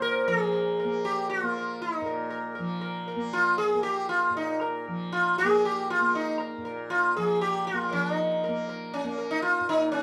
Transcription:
0.00 2.01 A#2 medium
0.00 0.27 F3 medium
0.00 0.84 A#3 medium
0.00 0.28 A#4 medium
0.27 2.58 F3 medium
0.27 1.00 G#4 medium
0.53 0.77 A#4 soft
0.80 1.03 A#4 soft
0.84 1.43 A#3 medium
1.05 1.29 G4 medium
1.29 1.81 F4 medium
1.43 3.16 A#3 medium
1.58 1.80 A#4 soft
1.82 2.54 D#4 medium
2.01 4.30 A#2 medium
2.06 2.29 A#4 soft
2.30 2.54 A#4 soft
2.55 4.87 F3 medium
2.55 2.80 A#4 soft
2.81 3.06 A#4 soft
3.08 3.32 A#4 soft
3.16 3.75 A#3 medium
3.33 3.57 F4 medium
3.58 3.83 G#4 medium
3.75 5.44 A#3 medium
3.83 4.09 G4 medium
4.09 4.36 F4 medium
4.30 6.57 A#2 medium
4.37 4.60 D#4 medium
4.61 4.85 A#4 soft
4.88 7.16 F3 medium
5.12 5.38 F4 medium
5.38 5.64 G#4 medium
5.44 6.01 A#3 medium
5.65 5.90 G4 medium
5.90 6.15 F4 medium
6.01 7.73 A#3 medium
6.15 6.38 D#4 medium
6.40 6.63 A#4 soft
6.58 9.60 A#2 medium
6.65 6.88 A#4 soft
6.90 7.16 F4 medium
7.17 7.92 F3 medium
7.17 7.41 G#4 medium
7.41 7.66 G4 medium
7.67 7.92 F4 medium
7.73 8.48 A#3 medium
7.91 10.03 F3 medium
7.91 8.13 C#4 medium
7.91 8.14 A#4 soft
8.13 8.64 D#4 medium
8.44 8.66 A#4 soft
8.48 9.04 A#3 medium
8.69 8.92 A#4 soft
8.94 9.32 C#4 medium
9.04 10.03 A#3 medium
9.18 9.41 A#4 soft
9.31 9.42 D#4 medium
9.42 9.69 F4 medium
9.60 10.03 A#2 medium
9.69 9.91 D#4 medium
9.92 10.03 C#4 medium

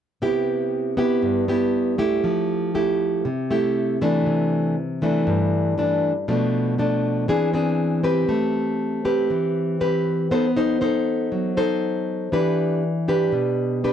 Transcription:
0.22 1.20 C3 medium
0.22 0.94 B3 soft
0.22 0.94 E4 soft
0.22 0.94 G4 soft
0.97 1.44 B3 medium
0.97 1.44 E4 medium
0.97 1.44 G4 medium
1.22 2.21 G2 medium
1.48 1.95 B3 medium
1.48 1.95 E4 medium
1.48 1.95 G4 medium
1.98 2.70 A3 soft
1.98 2.70 E4 medium
1.98 2.71 G4 medium
2.24 3.22 F3 medium
2.75 3.25 A3 soft
2.75 3.25 E4 soft
2.75 3.25 G4 soft
3.25 4.23 C3 medium
3.51 3.97 A3 medium
3.51 3.97 E4 soft
3.51 3.97 G4 medium
4.02 4.75 E3 medium
4.02 4.75 A3 medium
4.02 4.75 D4 medium
4.26 5.24 C3 medium
5.02 5.73 E3 soft
5.02 5.74 A3 medium
5.02 5.74 D4 medium
5.27 6.25 G2 medium
5.78 6.11 E3 soft
5.78 6.12 A3 soft
5.78 6.12 D4 medium
6.28 7.26 B2 medium
6.28 6.74 F3 soft
6.28 6.74 A3 soft
6.28 6.74 D4 medium
6.78 7.27 F3 soft
6.78 7.27 A3 soft
6.78 7.27 D4 medium
7.28 8.27 E3 medium
7.28 7.50 C4 soft
7.28 7.50 D4 medium
7.28 7.50 G#4 medium
7.53 8.00 C4 medium
7.53 8.00 D4 soft
7.53 8.00 G#4 medium
8.03 9.00 C4 medium
8.03 9.01 G4 medium
8.03 9.01 B4 medium
8.29 9.27 A3 medium
9.05 9.76 C4 medium
9.05 9.76 G4 medium
9.05 9.77 B4 medium
9.30 10.28 E3 medium
9.80 10.29 C4 soft
9.80 10.29 G4 soft
9.80 10.29 B4 medium
10.31 11.29 B3 medium
10.31 10.46 D#4 soft
10.31 10.46 A4 soft
10.31 10.46 C5 soft
10.56 10.77 D#4 medium
10.56 10.78 A4 medium
10.56 10.78 C5 medium
10.81 11.53 D#4 soft
10.81 11.53 A4 soft
10.81 11.53 C5 medium
11.32 12.30 F#3 medium
11.57 12.29 D#4 medium
11.57 12.29 A4 medium
11.57 12.29 C5 medium
12.32 13.31 E3 medium
12.32 12.83 D4 medium
12.32 12.83 G4 soft
12.32 12.83 B4 medium
13.08 13.80 D4 soft
13.08 13.80 G4 medium
13.08 13.80 B4 medium
13.32 13.93 B2 medium
13.84 13.93 D4 soft
13.84 13.93 G4 soft
13.84 13.93 B4 medium

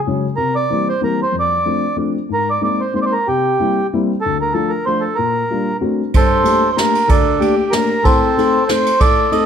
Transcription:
0.07 0.24 C#3 medium
0.07 0.24 F#3 medium
0.07 0.24 G#3 medium
0.07 0.24 C#4 medium
0.36 0.62 C3 medium
0.36 0.55 A#4 medium
0.55 0.88 D5 medium
0.70 0.87 E3 soft
0.70 0.87 G3 soft
0.70 0.87 A#3 soft
0.70 0.87 C4 medium
0.89 1.01 C5 medium
1.01 1.19 E3 medium
1.01 1.19 G3 soft
1.01 1.19 A#3 soft
1.01 1.19 C4 medium
1.01 1.20 A#4 medium
1.23 1.36 C5 medium
1.32 1.57 F2 soft
1.40 1.97 D5 medium
1.65 1.83 F3 soft
1.65 1.83 A3 medium
1.65 1.83 C4 soft
1.65 1.83 D4 medium
1.96 2.15 F3 soft
1.96 2.15 A3 medium
1.96 2.15 C4 medium
1.96 2.15 D4 medium
2.29 2.54 G#2 medium
2.33 2.50 A#4 medium
2.50 2.62 D5 medium
2.61 2.79 G#3 soft
2.61 2.79 A#3 soft
2.61 2.79 C4 soft
2.61 2.79 D#4 medium
2.61 2.81 D5 medium
2.80 2.94 C5 medium
2.93 3.12 G#3 medium
2.93 3.11 A#3 medium
2.93 3.11 C4 soft
2.93 3.12 D#4 soft
2.93 2.99 C5 medium
3.02 3.13 C5 medium
3.02 3.05 D5 medium
3.12 3.27 A#4 medium
3.28 3.51 C3 soft
3.28 3.87 G4 medium
3.60 3.76 G3 medium
3.60 3.76 A#3 soft
3.60 3.76 C4 soft
3.60 3.76 E4 medium
3.93 4.09 G3 medium
3.93 4.09 A#3 medium
3.93 4.09 C4 medium
3.93 4.09 E4 medium
4.21 4.38 A4 medium
4.26 4.48 D2 medium
4.41 4.53 A#4 medium
4.53 4.71 F3 medium
4.53 4.71 A3 medium
4.53 4.72 D4 soft
4.53 4.71 F4 medium
4.53 4.71 A4 medium
4.69 4.85 A#4 medium
4.86 5.04 F3 medium
4.86 5.04 A3 soft
4.86 5.04 D4 medium
4.86 5.04 F4 medium
4.86 5.04 C5 medium
5.00 5.17 A4 medium
5.15 5.42 A#2 medium
5.15 5.77 A#4 medium
5.50 5.68 G3 medium
5.50 5.67 A#3 soft
5.50 5.68 D4 soft
5.50 5.68 F4 medium
5.81 5.99 A3 medium
5.81 5.99 C4 medium
5.81 5.99 D4 medium
5.81 5.99 F#4 medium
6.14 6.39 G2 soft
6.14 6.69 A4 medium
6.14 6.70 C5 medium
6.14 kick medium
6.14 ride soft
6.44 6.62 A3 medium
6.44 6.62 A#3 medium
6.44 6.62 D4 medium
6.44 6.62 G4 medium
6.44 ride soft
6.72 6.78 C5 medium
6.76 6.95 A3 medium
6.76 6.95 A#3 medium
6.76 6.94 D4 soft
6.76 6.94 G4 medium
6.76 7.10 A#4 medium
6.76 snare medium
6.76 ride soft
6.95 ride soft
7.08 7.33 D2 medium
7.08 7.55 D4 medium
7.08 7.42 A4 medium
7.08 kick medium
7.08 ride soft
7.40 7.58 A3 medium
7.40 7.58 A#3 soft
7.40 7.58 D4 soft
7.40 7.73 G4 medium
7.40 7.58 G4 medium
7.40 ride soft
7.71 7.90 A3 medium
7.71 7.90 A#3 medium
7.71 7.90 D4 medium
7.71 7.90 G4 medium
7.71 8.04 A#4 medium
7.71 snare medium
7.71 ride soft
8.03 8.27 A2 medium
8.03 8.64 C4 medium
8.03 8.69 A4 loud
8.03 kick medium
8.03 ride soft
8.37 8.54 A3 medium
8.37 8.54 C4 medium
8.37 8.54 D#4 medium
8.37 8.54 A4 medium
8.37 ride soft
8.67 8.86 A3 medium
8.67 8.86 C4 soft
8.67 8.86 D#4 soft
8.67 8.86 A4 medium
8.67 9.00 C5 medium
8.67 snare medium
8.67 ride soft
8.86 ride soft
9.00 9.24 A2 medium
9.00 9.46 A4 medium
9.00 9.33 D5 loud
9.00 kick medium
9.00 ride soft
9.31 9.46 A3 medium
9.31 9.46 C4 medium
9.31 9.46 D#4 medium
9.31 9.46 A4 medium
9.31 9.46 D#5 medium
9.31 ride soft

